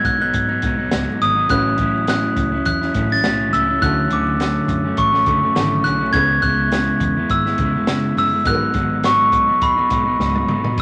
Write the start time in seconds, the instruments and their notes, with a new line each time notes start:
Already playing: clean electric guitar G#2 F#3 B3 D#4
0.05 fingered electric bass B1, glockenspiel F#6, kick, closed hi-hat
0.20 clean electric guitar F#3 B3 D#4, glockenspiel F#6
0.34 fingered electric bass G#2, kick, closed hi-hat
0.49 clean electric guitar F#3 B3 D#4
0.62 fingered electric bass B1, clean electric guitar G#2 F#3 B3 D#4, kick, closed hi-hat
0.78 clean electric guitar F#3 B3 D#4
0.91 fingered electric bass C#2, clean electric guitar G#2 F#3 B3 D#4, snare, closed hi-hat
1.19 fingered electric bass G#1, clean electric guitar G#2 F#3 B3 D#4, glockenspiel D#6, closed hi-hat
1.36 clean electric guitar F#3 B3 D#4
1.47 fingered electric bass A1, clean electric guitar A2 F#3 C#4 E4, upright piano C#4 E4 F#4, glockenspiel F#6, kick, closed hi-hat
1.52 upright piano B4
1.78 fingered electric bass A1, clean electric guitar A2 F#3 C#4 E4, kick, closed hi-hat
2.06 clean electric guitar A2 F#3 C#4 E4, glockenspiel F#6, snare, closed hi-hat
2.36 fingered electric bass C#2, kick, closed hi-hat
2.52 clean electric guitar F#3 C#4 E4
2.65 fingered electric bass E2, glockenspiel F#6, kick, closed hi-hat
2.81 clean electric guitar F#3 C#4 E4, snare
2.94 fingered electric bass A1, clean electric guitar A2 F#3 C#4 E4, kick, closed hi-hat
3.10 clean electric guitar F#3 C#4 E4, glockenspiel A6
3.23 fingered electric bass B1, clean electric guitar A2 F#3 C#4 E4, snare, closed hi-hat
3.51 fingered electric bass C#2, clean electric guitar A2 F#3 C#4 E4, glockenspiel E6, closed hi-hat
3.68 clean electric guitar F#3 C#4 E4
3.79 fingered electric bass D2, clean electric guitar D3 F#3 A3 C#4, upright piano C#4 E4 F#4, glockenspiel F#6, kick, closed hi-hat
3.84 upright piano A4
4.09 fingered electric bass D2, clean electric guitar D3 F#3 A3 C#4, glockenspiel D6, closed hi-hat
4.39 clean electric guitar D3 F#3 A3 C#4, snare, closed hi-hat
4.68 fingered electric bass F#2, kick, closed hi-hat
4.84 clean electric guitar F#3 A3 C#4
4.97 fingered electric bass A1, glockenspiel C#6, kick, closed hi-hat
5.12 clean electric guitar F#3 A3 C#4, snare
5.26 fingered electric bass F#1, clean electric guitar D3 F#3 A3 C#4, kick, closed hi-hat
5.41 clean electric guitar F#3 A3 C#4
5.54 fingered electric bass G#1, clean electric guitar D3 F#3 A3 C#4, upright piano C#4 E4 F#4 A4, snare, closed hi-hat
5.83 fingered electric bass B1, clean electric guitar D3 F#3 A3 C#4, glockenspiel F#6, closed hi-hat
5.99 clean electric guitar F#3 A3 C#4
6.12 fingered electric bass C#2, clean electric guitar C#3 G#3 B3 E4, upright piano C#4 E4 G#4, glockenspiel G#6, kick, closed hi-hat
6.16 upright piano B4
6.42 fingered electric bass C#2, clean electric guitar C#3 G#3 B3 E4, glockenspiel F#6, kick, closed hi-hat
6.71 clean electric guitar C#3 G#3 B3 E4, snare, closed hi-hat
7.00 fingered electric bass E2, kick, closed hi-hat
7.16 clean electric guitar G#3 B3 E4
7.30 fingered electric bass G#1, glockenspiel E6, kick, closed hi-hat
7.46 clean electric guitar G#3 B3 E4, snare
7.58 fingered electric bass E1, clean electric guitar C#3 G#3 B3 E4, kick, closed hi-hat
7.74 clean electric guitar G#3 B3 E4
7.87 fingered electric bass F#1, clean electric guitar C#3 G#3 B3 E4, snare, closed hi-hat
8.15 fingered electric bass F#1, clean electric guitar C#3 G#3 B3 E4, glockenspiel E6, open hi-hat
8.31 clean electric guitar G#3 B3 E4
8.43 fingered electric bass G#1, clean electric guitar G#2 F#3 B3 D#4, upright piano D#4 F#4 G#4, glockenspiel F#6, kick, closed hi-hat
8.48 upright piano A#4
8.54 upright piano B4
8.73 fingered electric bass G#1, clean electric guitar G#2 F#3 B3 D#4, kick, closed hi-hat
9.03 clean electric guitar G#2 F#3 B3 D#4, glockenspiel C#6, snare, closed hi-hat
9.32 fingered electric bass B1, kick, closed hi-hat
9.47 clean electric guitar F#3 B3 D#4
9.61 fingered electric bass D#2, glockenspiel B5, kick, closed hi-hat
9.76 clean electric guitar F#3 B3 D#4
9.89 fingered electric bass B1, clean electric guitar G#2 F#3 B3 D#4, kick, closed hi-hat
10.06 clean electric guitar F#3 B3 D#4
10.19 fingered electric bass C#2, clean electric guitar G#2 F#3 B3 D#4, snare
10.36 high tom
10.48 fingered electric bass G#1, clean electric guitar G#2 F#3 B3 D#4, mid tom
10.64 clean electric guitar F#3 B3 D#4, floor tom
10.78 fingered electric bass A1, kick, crash